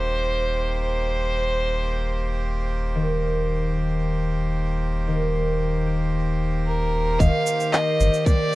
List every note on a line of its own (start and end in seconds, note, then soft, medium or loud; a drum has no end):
0.00 7.17 D#1 medium
0.00 8.55 D#3 medium
0.00 8.55 A#3 medium
0.00 2.74 C4 medium
0.00 1.71 D#4 medium
0.00 8.55 G4 medium
0.00 0.82 C5 loud
0.00 8.55 C5 medium
0.82 2.65 C5 loud
2.95 5.07 D#3 medium
3.22 5.34 A#3 medium
3.22 3.74 G4 medium
3.22 5.35 C5 medium
3.75 5.34 G4 medium
5.07 7.20 D#3 medium
5.34 7.73 A#3 medium
5.34 5.86 G4 medium
5.34 7.74 C5 medium
5.87 7.46 G4 medium
6.66 7.21 A#4 medium
7.19 7.29 D#1 loud
7.19 8.55 D#3 medium
7.19 7.45 D#5 medium
7.19 7.74 F5 loud
7.19 kick loud
7.19 cabasa soft
7.46 7.73 G4 medium
7.46 cabasa medium
7.60 cabasa soft
7.72 8.25 A#3 medium
7.72 8.26 G4 medium
7.72 7.99 C5 medium
7.72 8.26 D#5 loud
7.72 clap loud
7.72 cabasa soft
8.00 8.09 G1 loud
8.00 8.27 C5 medium
8.00 cabasa medium
8.14 cabasa soft
8.25 8.55 A#3 medium
8.25 8.55 G4 medium
8.25 8.55 C5 medium
8.25 8.55 D5 loud
8.25 kick loud
8.25 cabasa soft